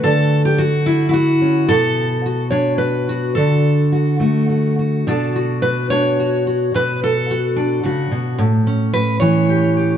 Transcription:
0, 0, Header, 1, 2, 480
1, 0, Start_track
1, 0, Tempo, 552486
1, 43, Time_signature, 3, 2, 24, 8
1, 3404, Tempo, 563910
1, 5804, Tempo, 549451
1, 8632, End_track
2, 0, Start_track
2, 0, Title_t, "Steel-string acoustic guitar"
2, 0, Program_c, 0, 25
2, 0, Note_on_c, 0, 57, 55
2, 0, Note_on_c, 0, 66, 42
2, 31, Note_on_c, 0, 69, 104
2, 37, Note_on_c, 0, 50, 72
2, 388, Note_off_c, 0, 69, 0
2, 392, Note_on_c, 0, 67, 71
2, 504, Note_off_c, 0, 66, 0
2, 508, Note_on_c, 0, 66, 91
2, 515, Note_off_c, 0, 67, 0
2, 745, Note_off_c, 0, 57, 0
2, 748, Note_on_c, 0, 64, 64
2, 931, Note_off_c, 0, 64, 0
2, 946, Note_on_c, 0, 64, 60
2, 975, Note_off_c, 0, 66, 0
2, 986, Note_on_c, 0, 66, 90
2, 1230, Note_on_c, 0, 61, 42
2, 1443, Note_off_c, 0, 50, 0
2, 1461, Note_off_c, 0, 61, 0
2, 1464, Note_on_c, 0, 69, 92
2, 1471, Note_off_c, 0, 66, 0
2, 1474, Note_on_c, 0, 47, 81
2, 1481, Note_off_c, 0, 64, 0
2, 1962, Note_on_c, 0, 66, 45
2, 2173, Note_off_c, 0, 69, 0
2, 2176, Note_on_c, 0, 73, 70
2, 2186, Note_on_c, 0, 62, 56
2, 2412, Note_off_c, 0, 73, 0
2, 2415, Note_on_c, 0, 71, 82
2, 2680, Note_off_c, 0, 66, 0
2, 2684, Note_on_c, 0, 66, 46
2, 2906, Note_off_c, 0, 71, 0
2, 2910, Note_on_c, 0, 69, 76
2, 2920, Note_off_c, 0, 47, 0
2, 2927, Note_on_c, 0, 50, 67
2, 3408, Note_off_c, 0, 66, 0
2, 3408, Note_on_c, 0, 66, 45
2, 3639, Note_off_c, 0, 66, 0
2, 3642, Note_on_c, 0, 57, 54
2, 3649, Note_on_c, 0, 66, 41
2, 3883, Note_off_c, 0, 66, 0
2, 3893, Note_on_c, 0, 66, 36
2, 4137, Note_off_c, 0, 66, 0
2, 4145, Note_on_c, 0, 66, 38
2, 4351, Note_off_c, 0, 50, 0
2, 4371, Note_off_c, 0, 69, 0
2, 4384, Note_off_c, 0, 66, 0
2, 4384, Note_on_c, 0, 47, 75
2, 4387, Note_off_c, 0, 62, 0
2, 4390, Note_on_c, 0, 62, 54
2, 4391, Note_off_c, 0, 57, 0
2, 4395, Note_on_c, 0, 66, 50
2, 4403, Note_on_c, 0, 69, 52
2, 4625, Note_off_c, 0, 66, 0
2, 4628, Note_on_c, 0, 66, 41
2, 4850, Note_off_c, 0, 69, 0
2, 4853, Note_on_c, 0, 71, 96
2, 5090, Note_off_c, 0, 71, 0
2, 5093, Note_on_c, 0, 73, 90
2, 5101, Note_off_c, 0, 62, 0
2, 5105, Note_on_c, 0, 62, 63
2, 5331, Note_off_c, 0, 66, 0
2, 5341, Note_on_c, 0, 66, 43
2, 5566, Note_off_c, 0, 66, 0
2, 5576, Note_on_c, 0, 66, 41
2, 5781, Note_off_c, 0, 66, 0
2, 5782, Note_off_c, 0, 62, 0
2, 5799, Note_off_c, 0, 47, 0
2, 5805, Note_off_c, 0, 73, 0
2, 5809, Note_on_c, 0, 47, 69
2, 5819, Note_on_c, 0, 71, 108
2, 6054, Note_off_c, 0, 71, 0
2, 6064, Note_on_c, 0, 69, 89
2, 6302, Note_on_c, 0, 66, 49
2, 6525, Note_on_c, 0, 62, 58
2, 6759, Note_off_c, 0, 47, 0
2, 6763, Note_on_c, 0, 49, 53
2, 6768, Note_off_c, 0, 66, 0
2, 6779, Note_on_c, 0, 66, 76
2, 6999, Note_off_c, 0, 49, 0
2, 7006, Note_on_c, 0, 47, 65
2, 7210, Note_off_c, 0, 62, 0
2, 7242, Note_off_c, 0, 47, 0
2, 7242, Note_on_c, 0, 45, 80
2, 7247, Note_off_c, 0, 69, 0
2, 7248, Note_off_c, 0, 66, 0
2, 7491, Note_on_c, 0, 61, 48
2, 7724, Note_on_c, 0, 71, 109
2, 7950, Note_off_c, 0, 71, 0
2, 7953, Note_on_c, 0, 73, 93
2, 7965, Note_on_c, 0, 52, 70
2, 8209, Note_on_c, 0, 67, 46
2, 8447, Note_off_c, 0, 67, 0
2, 8450, Note_on_c, 0, 67, 41
2, 8632, Note_off_c, 0, 45, 0
2, 8632, Note_off_c, 0, 52, 0
2, 8632, Note_off_c, 0, 61, 0
2, 8632, Note_off_c, 0, 67, 0
2, 8632, Note_off_c, 0, 73, 0
2, 8632, End_track
0, 0, End_of_file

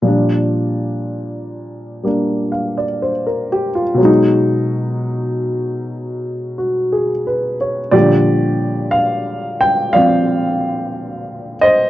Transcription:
0, 0, Header, 1, 2, 480
1, 0, Start_track
1, 0, Key_signature, -2, "major"
1, 0, Tempo, 988468
1, 29, Time_signature, 4, 2, 24, 8
1, 1468, Tempo, 967742
1, 2908, Tempo, 1008403
1, 4828, Tempo, 990099
1, 5768, End_track
2, 0, Start_track
2, 0, Title_t, "Grand piano"
2, 0, Program_c, 0, 0
2, 10, Note_on_c, 0, 46, 42
2, 17, Note_on_c, 0, 53, 37
2, 26, Note_on_c, 0, 55, 35
2, 37, Note_on_c, 0, 62, 44
2, 132, Control_c, 0, 64, 127
2, 981, Note_off_c, 0, 55, 0
2, 988, Note_on_c, 0, 55, 31
2, 993, Note_on_c, 0, 58, 29
2, 995, Note_off_c, 0, 62, 0
2, 1002, Note_on_c, 0, 62, 32
2, 1223, Note_on_c, 0, 77, 35
2, 1348, Note_on_c, 0, 74, 36
2, 1373, Note_off_c, 0, 77, 0
2, 1468, Note_on_c, 0, 72, 42
2, 1515, Note_off_c, 0, 74, 0
2, 1588, Note_on_c, 0, 70, 39
2, 1694, Note_off_c, 0, 72, 0
2, 1716, Note_on_c, 0, 67, 42
2, 1795, Note_off_c, 0, 70, 0
2, 1829, Note_on_c, 0, 65, 47
2, 1860, Note_off_c, 0, 67, 0
2, 1924, Note_on_c, 0, 47, 48
2, 1939, Note_off_c, 0, 46, 0
2, 1941, Note_on_c, 0, 54, 46
2, 1942, Note_off_c, 0, 53, 0
2, 1946, Note_off_c, 0, 55, 0
2, 1949, Note_off_c, 0, 58, 0
2, 1954, Note_off_c, 0, 62, 0
2, 1954, Control_c, 0, 64, 0
2, 1959, Note_on_c, 0, 56, 45
2, 1977, Note_on_c, 0, 63, 56
2, 1996, Note_off_c, 0, 65, 0
2, 2055, Control_c, 0, 64, 127
2, 3219, Note_on_c, 0, 66, 36
2, 3383, Note_on_c, 0, 68, 37
2, 3470, Note_off_c, 0, 66, 0
2, 3547, Note_on_c, 0, 71, 38
2, 3689, Note_off_c, 0, 68, 0
2, 3708, Note_on_c, 0, 73, 36
2, 3796, Note_off_c, 0, 71, 0
2, 3854, Note_off_c, 0, 47, 0
2, 3854, Note_on_c, 0, 74, 71
2, 3856, Note_on_c, 0, 46, 46
2, 3862, Note_off_c, 0, 54, 0
2, 3862, Note_on_c, 0, 67, 50
2, 3866, Note_on_c, 0, 53, 40
2, 3870, Note_off_c, 0, 56, 0
2, 3871, Control_c, 0, 64, 0
2, 3872, Note_on_c, 0, 55, 38
2, 3879, Note_off_c, 0, 63, 0
2, 3880, Note_on_c, 0, 50, 50
2, 3940, Control_c, 0, 64, 127
2, 3957, Note_off_c, 0, 73, 0
2, 4329, Note_on_c, 0, 77, 78
2, 4360, Note_off_c, 0, 74, 0
2, 4645, Note_off_c, 0, 77, 0
2, 4660, Note_on_c, 0, 79, 77
2, 4809, Note_off_c, 0, 67, 0
2, 4813, Note_on_c, 0, 77, 81
2, 4818, Note_off_c, 0, 53, 0
2, 4820, Note_on_c, 0, 74, 50
2, 4826, Note_on_c, 0, 53, 36
2, 4827, Note_off_c, 0, 79, 0
2, 4837, Note_on_c, 0, 60, 37
2, 5604, Note_off_c, 0, 77, 0
2, 5630, Note_on_c, 0, 75, 82
2, 5638, Note_on_c, 0, 72, 54
2, 5765, Note_off_c, 0, 74, 0
2, 5768, Note_off_c, 0, 46, 0
2, 5768, Note_off_c, 0, 50, 0
2, 5768, Note_off_c, 0, 53, 0
2, 5768, Note_off_c, 0, 55, 0
2, 5768, Note_off_c, 0, 60, 0
2, 5768, Note_off_c, 0, 72, 0
2, 5768, Note_off_c, 0, 75, 0
2, 5768, End_track
0, 0, End_of_file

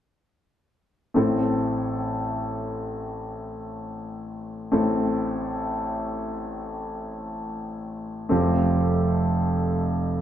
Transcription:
0, 0, Header, 1, 2, 480
1, 0, Start_track
1, 0, Key_signature, 0, "minor"
1, 0, Tempo, 500000
1, 9804, End_track
2, 0, Start_track
2, 0, Title_t, "Grand piano"
2, 0, Program_c, 0, 0
2, 1097, Note_on_c, 0, 57, 35
2, 1109, Note_on_c, 0, 33, 34
2, 1109, Note_on_c, 0, 60, 33
2, 1110, Note_on_c, 0, 45, 33
2, 1115, Note_on_c, 0, 64, 30
2, 1126, Note_on_c, 0, 69, 39
2, 1299, Control_c, 0, 64, 127
2, 4501, Note_off_c, 0, 57, 0
2, 4507, Note_off_c, 0, 33, 0
2, 4507, Note_off_c, 0, 60, 0
2, 4508, Note_off_c, 0, 45, 0
2, 4510, Note_off_c, 0, 64, 0
2, 4515, Note_off_c, 0, 69, 0
2, 4527, Note_on_c, 0, 57, 36
2, 4535, Note_on_c, 0, 60, 35
2, 4542, Note_on_c, 0, 45, 37
2, 4545, Note_on_c, 0, 33, 35
2, 4550, Note_on_c, 0, 64, 35
2, 4556, Note_on_c, 0, 69, 43
2, 7935, Note_off_c, 0, 57, 0
2, 7939, Note_off_c, 0, 60, 0
2, 7943, Note_off_c, 0, 45, 0
2, 7944, Note_off_c, 0, 33, 0
2, 7947, Note_off_c, 0, 64, 0
2, 7950, Note_off_c, 0, 69, 0
2, 7959, Note_on_c, 0, 57, 40
2, 7970, Note_on_c, 0, 60, 38
2, 7978, Note_on_c, 0, 29, 40
2, 7978, Note_on_c, 0, 41, 37
2, 7982, Note_on_c, 0, 65, 37
2, 7990, Note_on_c, 0, 67, 44
2, 7994, Control_c, 0, 64, 0
2, 8170, Control_c, 0, 64, 127
2, 9804, Note_off_c, 0, 29, 0
2, 9804, Note_off_c, 0, 41, 0
2, 9804, Note_off_c, 0, 57, 0
2, 9804, Note_off_c, 0, 60, 0
2, 9804, Note_off_c, 0, 65, 0
2, 9804, Note_off_c, 0, 67, 0
2, 9804, End_track
0, 0, End_of_file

